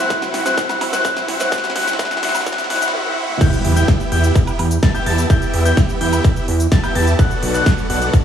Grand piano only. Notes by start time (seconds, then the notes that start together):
0.10 F#6
0.46 F#6
0.58 F#6
0.93 F#6
1.05 F#6
1.40 F#6
1.52 F#6
1.76 F#6
1.99 F#6
2.23 F#6
2.46 F#6
2.70 F#6
3.41 G6
3.76 G6
4.12 G6
4.83 A6
4.95 G6
5.06 A6
5.30 G6
5.65 G6
6.01 G6
6.72 A6
6.84 G6
6.95 A6
7.19 F#6
7.54 F#6
7.90 F#6